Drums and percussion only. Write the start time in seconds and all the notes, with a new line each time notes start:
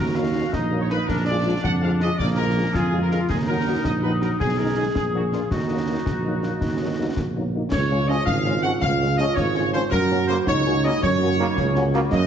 0.53 concert bass drum, snare
0.90 snare
1.09 concert bass drum, snare
1.64 concert bass drum, snare
2.00 snare
2.19 concert bass drum, snare
2.74 concert bass drum, snare
3.11 snare
3.29 concert bass drum, snare, crash
3.84 concert bass drum, snare
4.22 snare
4.40 concert bass drum, snare
4.95 concert bass drum, snare
5.33 snare
5.51 concert bass drum, snare
6.06 concert bass drum, snare
6.43 snare
6.61 concert bass drum, snare
7.16 concert bass drum, snare
7.72 concert bass drum, snare, crash
8.27 concert bass drum, snare
8.45 snare
8.63 snare
8.82 concert bass drum, snare
9.18 snare
9.37 concert bass drum, snare
9.55 snare
9.73 snare
9.92 concert bass drum, snare, crash
10.47 concert bass drum, snare
10.65 snare
10.84 snare
11.03 concert bass drum, snare
11.39 snare
11.57 concert bass drum, snare
11.76 snare
11.94 snare
12.12 concert bass drum, snare, crash